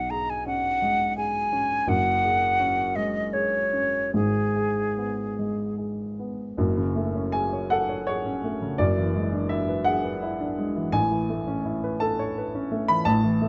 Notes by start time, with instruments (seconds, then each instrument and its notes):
Already playing: grand piano B1 B2, flute F#5
0.10 grand piano G#4, flute A#5
0.30 flute G#5
0.46 grand piano C#4, flute F#5
0.82 grand piano G#3
1.17 grand piano G#4, flute G#5
1.52 grand piano C#4
1.87 grand piano F#1 F#2, flute F#5
2.24 grand piano G#4
2.60 grand piano C#4
2.96 grand piano G#3, flute D#5
3.33 grand piano G#4, flute C#5
3.73 grand piano C#4
4.14 grand piano G#1 G#2, flute G#4
4.56 grand piano G#4
4.97 grand piano B3
5.39 grand piano G#3
5.78 grand piano G#4
6.19 grand piano B3
6.57 grand piano F#1 F#2
6.77 grand piano C#3
6.96 grand piano A3
7.15 grand piano C#4
7.32 grand piano G#4 G#5
7.53 grand piano C#5
7.70 grand piano A4 F#5
7.89 grand piano C#5
8.07 grand piano G#4 C#5
8.26 grand piano C#4
8.44 grand piano A3
8.62 grand piano C#3
8.78 grand piano F#1 F#2 D5
8.97 grand piano E3
9.16 grand piano G#3
9.33 grand piano D4
9.49 grand piano E4 E5
9.69 grand piano B4
9.85 grand piano G#4 F#5
10.05 grand piano B4
10.22 grand piano E4
10.41 grand piano D4
10.58 grand piano G#3
10.76 grand piano E3
10.92 grand piano A1 A2 G#5
11.11 grand piano E3
11.29 grand piano A3
11.47 grand piano C#4
11.65 grand piano E4
11.84 grand piano B4
12.00 grand piano A4 A5
12.19 grand piano C#5
12.38 grand piano B4
12.55 grand piano C#4
12.72 grand piano A3
12.88 grand piano E3 B5
13.05 grand piano A1 A2 A5
13.24 grand piano E3
13.42 grand piano A3